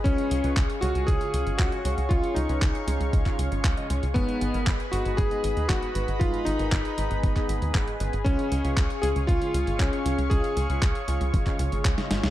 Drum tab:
HH |xxxxxxxxxxxxxxxx|xxxxxxxxxxxxxxxx|xxxxxxxxxxxxxxxx|xxxxxxxxxxxxxxxx|
CP |----x-------x---|----x----x--x---|----x-------x---|----x----x--x---|
SD |----------------|----------------|----------------|----------------|
BD |o---o---o---o---|o---o---oo--o---|o---o---o---o---|o---o---oo--o---|

HH |xxxxxxxxxxxxxxxx|xxxxxxxxxxxxxxxx|
CP |----x-------x---|----x----x--x---|
SD |----------------|-------------ooo|
BD |o---o---o---o---|o---o---oo--o---|